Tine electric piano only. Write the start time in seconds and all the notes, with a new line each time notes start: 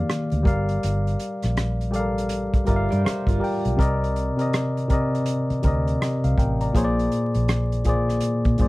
Already playing: D#3 A#3 G4 D5 F5 G5
0.43 G3 G4 A#4 D5
0.47 F5
1.91 G3 G4 A4 D5
1.96 A#4 F5
2.65 G3 G4 A#4 D5
2.70 E5
2.76 F5
3.39 G3 G4 A#4 D5
3.44 G5
3.77 C3 C4 A#4 D5
3.81 D#5
4.36 C3 C4 A#4 D5
4.41 D#5
4.88 C3 C4 A#4 D5
4.93 D#5
5.62 C3 C4 A#4 D5
5.67 D#5
6.01 G4 D#5
6.24 F5
6.38 A#4 G5
6.61 D5 A#5
6.73 A#2 A#3 G#4 C5
6.78 C#5
6.84 D5
7.84 A#2 A#3 G#4
7.88 C5 D5
8.58 A#2 A#3 G#4 C5
8.62 D5